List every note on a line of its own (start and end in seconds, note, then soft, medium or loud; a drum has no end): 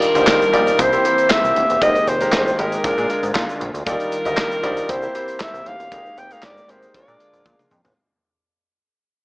0.00 0.78 D#3 medium
0.00 0.78 G3 medium
0.00 0.78 D4 medium
0.00 0.78 F4 medium
0.00 0.82 A#4 loud
0.00 closed hi-hat medium
0.00 shaker medium
0.15 0.24 D2 medium
0.15 0.42 G3 medium
0.15 0.42 D#4 medium
0.15 0.42 F4 medium
0.15 0.42 C5 medium
0.15 closed hi-hat medium
0.15 shaker medium
0.27 kick loud
0.27 snare loud
0.27 clap medium
0.27 shaker medium
0.42 shaker medium
0.53 0.72 A#1 medium
0.53 0.79 G3 medium
0.53 0.79 D#4 medium
0.53 0.79 F4 medium
0.53 0.79 D5 medium
0.53 closed hi-hat medium
0.67 closed hi-hat soft
0.67 shaker medium
0.79 0.98 C2 loud
0.79 1.81 E3 medium
0.79 0.90 A#3 medium
0.79 3.84 A#3 medium
0.79 1.80 C4 medium
0.79 0.90 E4 medium
0.79 2.82 G4 loud
0.79 0.90 G4 medium
0.79 0.90 C5 medium
0.79 1.33 C5 loud
0.79 kick loud
0.79 closed hi-hat loud
0.79 shaker medium
0.92 1.01 A#3 medium
0.92 1.01 E4 medium
0.92 1.01 G4 medium
0.92 1.01 C5 medium
0.92 closed hi-hat soft
0.92 shaker medium
1.05 1.58 A#3 medium
1.05 1.58 E4 medium
1.05 1.58 G4 medium
1.05 1.58 C5 medium
1.05 closed hi-hat medium
1.05 shaker medium
1.18 closed hi-hat soft
1.18 shaker medium
1.30 1.82 E5 loud
1.30 kick loud
1.30 snare loud
1.30 clap loud
1.30 shaker medium
1.44 1.53 C2 medium
1.44 shaker medium
1.56 1.66 D#1 loud
1.56 closed hi-hat medium
1.70 1.78 E1 medium
1.70 closed hi-hat medium
1.70 shaker soft
1.81 2.01 F1 loud
1.81 2.83 D#3 medium
1.81 2.08 G#3 medium
1.81 3.85 G#3 medium
1.81 2.08 D#4 medium
1.81 2.08 G4 medium
1.81 2.08 A#4 medium
1.81 2.10 D#5 loud
1.81 kick loud
1.81 closed hi-hat medium
1.81 shaker medium
1.95 closed hi-hat soft
1.95 shaker soft
2.07 2.26 F1 medium
2.07 2.61 C5 loud
2.07 closed hi-hat medium
2.07 shaker medium
2.20 2.47 G#3 medium
2.20 2.47 D#4 medium
2.20 2.47 G4 medium
2.20 2.48 A#4 medium
2.20 closed hi-hat medium
2.20 shaker medium
2.32 2.52 G1 loud
2.32 kick loud
2.32 snare loud
2.32 clap medium
2.32 shaker medium
2.47 shaker medium
2.58 2.78 G#1 medium
2.58 2.82 G#3 medium
2.58 2.84 D#4 medium
2.58 2.84 G4 medium
2.58 2.83 A#4 medium
2.58 2.85 A#4 medium
2.58 closed hi-hat medium
2.72 closed hi-hat soft
2.72 shaker medium
2.84 2.94 A#1 loud
2.84 3.85 D3 medium
2.84 2.95 G#3 medium
2.84 2.95 D4 medium
2.84 3.85 F4 medium
2.84 2.95 F4 medium
2.84 2.95 A#4 medium
2.84 3.32 A#4 medium
2.84 kick loud
2.84 closed hi-hat loud
2.84 shaker medium
2.97 3.07 A#2 loud
2.97 3.06 G#3 medium
2.97 3.06 D4 medium
2.97 3.06 F4 medium
2.97 3.06 G#4 medium
2.97 closed hi-hat soft
2.97 shaker medium
3.09 3.63 G#3 medium
3.09 3.63 D4 medium
3.09 3.63 F4 medium
3.09 3.63 A#4 medium
3.09 closed hi-hat medium
3.09 shaker soft
3.23 3.32 G#2 medium
3.23 closed hi-hat medium
3.23 shaker medium
3.35 3.45 A#2 loud
3.35 kick loud
3.35 snare loud
3.35 clap loud
3.35 shaker medium
3.49 shaker medium
3.61 3.71 A#1 medium
3.61 closed hi-hat medium
3.74 3.83 D2 medium
3.74 closed hi-hat medium
3.74 shaker soft
3.86 3.97 D#2 loud
3.86 4.88 D#3 medium
3.86 4.13 G3 medium
3.86 4.88 G3 medium
3.86 4.88 D4 medium
3.86 4.13 D#4 medium
3.86 4.13 F4 medium
3.86 4.88 F4 medium
3.86 4.92 A#4 loud
3.86 4.13 D5 medium
3.86 kick loud
3.86 closed hi-hat medium
3.86 shaker medium
4.00 closed hi-hat soft
4.00 shaker soft
4.12 closed hi-hat medium
4.12 shaker medium
4.25 4.35 D2 medium
4.25 4.52 G3 medium
4.25 4.52 D#4 medium
4.25 4.52 F4 medium
4.25 4.52 D#5 medium
4.25 closed hi-hat medium
4.25 shaker medium
4.37 kick loud
4.37 snare loud
4.37 clap medium
4.37 shaker medium
4.52 closed hi-hat soft
4.52 shaker medium
4.63 4.83 A#1 loud
4.63 4.89 G3 medium
4.63 4.89 D#4 medium
4.63 4.89 F4 medium
4.63 4.89 D5 loud
4.63 closed hi-hat medium
4.77 closed hi-hat soft
4.77 shaker medium
4.89 5.08 C2 loud
4.89 5.91 E3 medium
4.89 5.00 A#3 medium
4.89 6.92 A#3 medium
4.89 5.91 C4 medium
4.89 5.00 E4 medium
4.89 6.92 G4 medium
4.89 5.00 G4 medium
4.89 5.00 C5 medium
4.89 5.44 C5 loud
4.89 kick loud
4.89 closed hi-hat loud
4.89 shaker medium
5.02 5.11 A#3 medium
5.02 5.11 E4 medium
5.02 5.11 G4 medium
5.02 5.11 C5 medium
5.02 shaker medium
5.15 5.68 A#3 medium
5.15 5.68 E4 medium
5.15 5.68 G4 medium
5.15 5.68 C5 medium
5.15 closed hi-hat medium
5.15 shaker medium
5.28 closed hi-hat medium
5.28 shaker medium
5.40 5.69 E5 loud
5.40 kick loud
5.40 snare loud
5.40 clap loud
5.40 shaker medium
5.54 5.63 C2 medium
5.54 closed hi-hat soft
5.54 shaker medium
5.66 5.76 D#1 loud
5.66 6.20 F5 loud
5.66 closed hi-hat medium
5.79 5.88 E1 medium
5.79 closed hi-hat medium
5.79 shaker soft
5.91 6.11 F1 loud
5.91 6.93 D#3 medium
5.91 7.95 G#3 medium
5.91 6.18 G#3 medium
5.91 6.18 D#4 medium
5.91 6.18 G4 medium
5.91 6.19 A#4 medium
5.91 kick loud
5.91 closed hi-hat medium
5.91 shaker medium
6.06 shaker soft
6.17 6.36 F1 medium
6.17 6.34 G5 loud
6.17 closed hi-hat medium
6.17 shaker medium
6.31 6.57 G#3 medium
6.31 6.58 D#4 medium
6.31 6.58 G4 medium
6.31 6.58 A#4 medium
6.31 6.46 F5 loud
6.31 closed hi-hat medium
6.31 shaker medium
6.42 6.62 G1 loud
6.42 6.72 D5 loud
6.42 kick loud
6.42 snare loud
6.42 clap medium
6.42 shaker medium
6.57 shaker medium
6.68 6.88 G#1 medium
6.68 6.93 G#3 medium
6.68 6.94 D#4 medium
6.68 6.94 G4 medium
6.68 6.94 A#4 medium
6.68 6.95 C5 medium
6.68 closed hi-hat medium
6.68 shaker medium
6.83 closed hi-hat soft
6.83 shaker medium
6.94 7.04 A#1 loud
6.94 7.96 D3 medium
6.94 7.05 G#3 medium
6.94 7.96 A#3 medium
6.94 7.05 D4 medium
6.94 7.96 F4 medium
6.94 7.05 F4 medium
6.94 7.06 A#4 medium
6.94 7.68 D5 medium
6.94 kick loud
6.94 closed hi-hat loud
6.94 shaker medium
7.08 7.17 A#2 loud
7.08 7.16 G#3 medium
7.08 7.16 D4 medium
7.08 7.16 F4 medium
7.08 7.16 A#4 medium
7.08 shaker medium
7.20 7.73 G#3 medium
7.20 7.73 D4 medium
7.20 7.73 F4 medium
7.20 7.73 A#4 medium
7.20 closed hi-hat medium
7.20 shaker soft
7.33 7.42 A#1 medium
7.33 closed hi-hat medium
7.33 shaker soft
7.46 7.56 A#2 loud
7.46 kick loud
7.46 high tom medium
7.46 shaker medium
7.59 mid tom medium
7.59 shaker medium
7.71 7.81 F2 loud
7.71 mid tom medium
7.71 shaker medium
7.85 7.94 A1 medium
7.85 floor tom medium
7.85 shaker soft